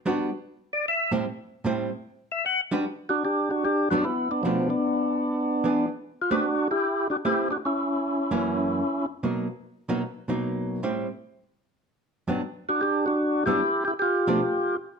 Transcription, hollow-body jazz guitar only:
0.06 0.29 G3 medium
0.06 0.29 B3 medium
0.06 0.29 D4 medium
0.06 0.30 F#4 medium
1.12 1.24 A2 medium
1.12 1.24 G3 medium
1.12 1.24 C4 medium
1.12 1.25 E4 medium
1.65 1.88 A2 medium
1.65 1.89 G3 medium
1.65 1.89 C4 medium
1.65 1.89 E4 medium
2.72 2.84 G3 medium
2.72 2.84 D4 medium
2.72 2.84 F#4 medium
2.72 2.84 B4 medium
3.91 4.03 G2 medium
3.91 4.04 F#3 medium
3.91 4.04 B3 medium
3.91 4.04 D4 medium
4.45 4.68 B2 soft
4.45 4.68 F3 medium
4.45 4.68 A3 medium
4.45 4.68 D4 medium
5.64 5.87 E3 medium
5.64 5.88 B3 medium
5.64 5.88 D4 medium
5.64 5.88 G#4 medium
6.31 6.43 A3 medium
6.31 6.43 C4 medium
6.31 6.43 G4 medium
6.31 6.44 B4 medium
7.25 7.48 A3 medium
7.25 7.48 C4 medium
7.25 7.48 G4 medium
7.25 7.48 B4 medium
8.31 8.81 F#2 medium
8.31 8.81 E3 medium
8.31 8.81 A#3 medium
8.31 8.82 C#4 medium
9.23 9.46 B2 soft
9.23 9.46 F#3 soft
9.23 9.47 A#3 soft
9.23 9.47 D#4 soft
9.89 10.01 B2 medium
9.89 10.02 F#3 medium
9.89 10.02 A#3 medium
9.89 10.02 D#4 medium
10.28 10.79 B2 medium
10.28 10.80 F#3 medium
10.28 10.80 A#3 medium
10.28 10.80 D#4 medium
10.83 11.06 A2 medium
10.83 11.06 G3 medium
10.83 11.06 C4 medium
10.83 11.06 E4 medium
12.28 12.40 G2 medium
12.28 12.40 F#3 medium
12.28 12.41 B3 medium
12.28 12.41 D4 medium
13.46 13.59 G2 medium
13.46 13.59 F#3 medium
13.46 13.60 B3 medium
13.46 13.60 D4 medium
14.27 14.39 B2 medium
14.27 14.40 F3 medium
14.27 14.40 A3 medium
14.27 14.40 D4 medium

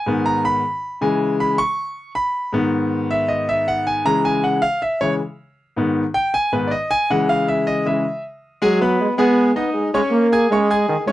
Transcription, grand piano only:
0.00 0.41 G#5 medium
0.06 0.61 G#2 medium
0.06 0.61 D#3 medium
0.06 0.61 B3 medium
0.26 0.44 A#5 medium
0.45 0.98 B5 loud
1.01 1.56 C#3 medium
1.01 1.56 E3 medium
1.01 1.56 G#3 medium
1.01 1.55 G#5 medium
1.40 1.58 B5 medium
1.58 2.11 C#6 loud
2.15 2.68 B5 medium
2.53 4.01 G#2 medium
2.53 4.01 D#3 medium
2.53 4.02 B3 medium
3.11 3.29 E5 medium
3.28 3.47 D#5 medium
3.49 3.67 E5 medium
3.68 3.86 F#5 loud
3.87 4.05 G#5 medium
4.05 4.59 C#3 medium
4.05 4.60 E3 medium
4.05 4.60 G#3 medium
4.05 4.24 A#5 loud
4.25 4.43 G#5 loud
4.44 4.62 F#5 medium
4.62 4.81 F5 loud
4.82 5.00 E5 medium
5.01 5.18 C#3 medium
5.01 5.18 E3 soft
5.01 5.18 G#3 medium
5.01 5.12 C#5 medium
5.76 6.02 G#2 medium
5.76 6.02 D#3 medium
5.76 6.02 B3 medium
6.14 6.33 G5 loud
6.34 6.52 G#5 loud
6.52 6.69 G#2 soft
6.52 6.70 D#3 soft
6.52 6.70 B3 medium
6.52 6.71 B4 medium
6.67 6.70 D5 medium
6.67 6.90 D#5 medium
6.91 7.09 G#5 loud
7.10 7.84 C#3 medium
7.10 7.85 E3 medium
7.10 7.85 G#3 medium
7.10 7.28 F#5 medium
7.29 7.47 F5 medium
7.48 7.66 E5 medium
7.67 7.85 D#5 medium
7.86 8.02 C#3 soft
7.86 8.03 E3 soft
7.86 8.03 G#3 medium
7.86 8.21 E5 medium
8.62 8.77 G#3 medium
8.62 8.77 G#4 loud
8.62 8.77 G#5 medium
8.81 9.12 B3 medium
8.81 9.12 B4 medium
8.81 9.12 B5 medium
9.18 9.49 G#3 medium
9.18 9.49 G#4 loud
9.18 9.50 G#5 medium
9.56 9.87 D#4 medium
9.56 9.87 D#5 medium
9.56 9.87 D#6 medium
9.94 10.25 C#4 medium
9.94 10.25 C#5 medium
9.94 10.25 C#6 medium
10.32 10.48 G#4 medium
10.32 10.48 G#5 medium
10.32 10.48 G#6 medium
10.52 10.67 C#4 medium
10.52 10.67 C#5 medium
10.52 10.67 C#6 medium
10.70 11.01 G#4 medium
10.70 11.01 G#5 medium
10.70 11.01 G#6 medium
11.07 11.12 C#4 medium
11.07 11.12 C#5 medium
11.07 11.12 C#6 medium

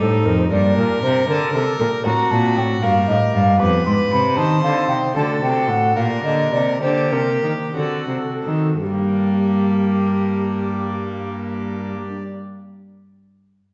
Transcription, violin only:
0.00 0.50 D#4 medium
0.52 2.03 A#4 loud
2.06 2.84 F#4 loud
2.83 3.59 A#4 medium
3.60 4.36 B4 loud
4.38 5.14 C5 loud
5.16 5.98 A4 medium
5.97 6.82 A#4 medium
6.83 7.74 G4 medium
7.76 8.26 F#4 medium
8.81 11.96 A#3 medium

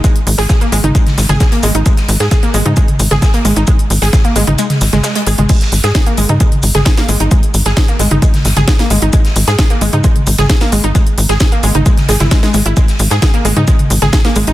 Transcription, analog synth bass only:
0.27 0.36 G#1 loud
0.38 0.47 G#1 medium
0.72 0.81 G#1 medium
0.84 0.92 G#1 medium
1.18 1.27 G#1 medium
1.29 1.38 G#1 medium
1.63 1.72 G#1 medium
1.75 1.83 G#1 medium
2.09 2.18 G#1 loud
2.20 2.29 G#2 medium
2.54 2.63 G#1 medium
2.66 2.74 G#2 medium
3.00 3.09 G#1 medium
3.11 3.20 G#1 medium
3.45 3.54 G#1 loud
3.56 3.65 G#1 medium
3.90 3.99 G#1 loud
4.02 4.11 G#1 medium
4.36 4.45 G#1 medium
4.47 4.56 G#1 medium
4.81 4.90 G#1 medium
4.93 5.02 G#1 medium
5.27 5.36 G#1 loud
5.38 5.47 G#1 medium
5.72 5.81 G#1 medium
5.84 5.93 G#2 medium
6.18 6.27 G#1 medium
6.29 6.38 G#2 medium
6.63 6.72 G#1 medium
6.75 6.83 G#1 medium
7.09 7.18 G#1 loud
7.20 7.29 G#1 medium
7.54 7.63 G#1 medium
7.66 7.74 G#1 medium
8.00 8.09 G#1 loud
8.11 8.20 G#1 medium
8.45 8.54 G#1 medium
8.57 8.65 G#1 medium
8.90 8.99 G#1 loud
9.02 9.11 G#1 medium
9.36 9.45 G#1 loud
9.48 9.56 G#2 medium
9.81 9.90 G#1 loud
9.93 10.02 G#2 medium
10.27 10.36 G#1 loud
10.39 10.47 G#1 medium
10.72 10.81 G#1 loud
10.84 10.93 G#1 medium
11.18 11.27 G#1 medium
11.30 11.38 G#1 medium
11.63 11.72 G#1 medium
11.75 11.84 G#1 medium
12.09 12.18 G#1 medium
12.20 12.29 G#1 medium
12.54 12.63 G#1 loud
12.66 12.74 G#1 medium
13.00 13.09 G#1 medium
13.11 13.20 G#2 medium
13.45 13.54 G#1 medium
13.57 13.65 G#2 medium
13.90 13.99 G#1 loud
14.02 14.11 G#1 medium
14.36 14.45 G#1 loud
14.48 14.53 G#1 medium

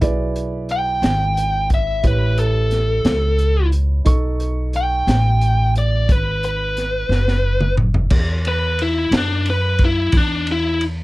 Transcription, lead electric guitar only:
0.72 1.68 G5 medium
1.74 2.05 E5 medium
2.07 2.38 B4 medium
2.39 3.69 A4 medium
4.76 5.73 G5 medium
5.78 6.09 D5 medium
6.12 6.43 B4 medium
6.45 7.74 B4 medium
8.48 8.79 B4 loud
8.82 9.13 E4 medium
9.17 9.47 D4 medium
9.50 9.80 B4 medium
9.85 10.15 E4 medium
10.17 10.48 D4 medium
10.52 10.82 E4 medium

